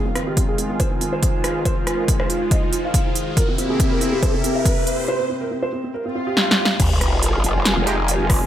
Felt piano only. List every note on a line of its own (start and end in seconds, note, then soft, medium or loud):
0.06 0.13 C4 medium
0.16 0.24 C4 medium
0.27 0.35 G4 medium
0.37 0.46 C4 medium
0.48 0.56 G#4 medium
0.58 0.67 C4 medium
0.70 0.77 C4 medium
0.80 0.89 C5 medium
0.91 0.99 C4 medium
1.01 1.10 C4 medium
1.13 1.57 C5 medium
1.65 1.74 C5 loud
1.77 1.85 F4 medium
1.87 1.96 F4 medium
1.98 2.06 A#4 medium
2.08 2.17 F4 medium
2.20 2.27 C5 medium
2.30 2.39 F4 medium
2.41 2.49 F4 medium
2.51 2.60 D#5 medium
2.63 2.70 F4 medium
2.73 2.81 F4 medium
2.84 3.29 F5 medium
3.37 3.46 A#4 loud
3.48 3.56 C4 medium
3.58 3.67 C4 medium
3.70 3.77 G#4 medium
3.80 3.88 C4 medium
3.91 3.99 A#4 medium
4.01 4.10 C4 medium
4.13 4.20 C4 medium
4.23 4.31 C5 medium
4.34 4.42 C4 medium
4.44 4.53 C4 medium
4.55 5.00 E5 loud
5.08 5.17 C5 loud
5.20 5.27 C4 medium
5.30 5.38 C4 medium
5.41 5.49 A#4 medium
5.51 5.60 C4 medium
5.62 5.70 C5 medium
5.73 5.81 C4 medium
5.84 5.92 C4 medium
5.94 6.03 A#4 medium
6.05 6.13 C4 medium
6.15 6.24 C4 medium
6.27 6.72 G4 medium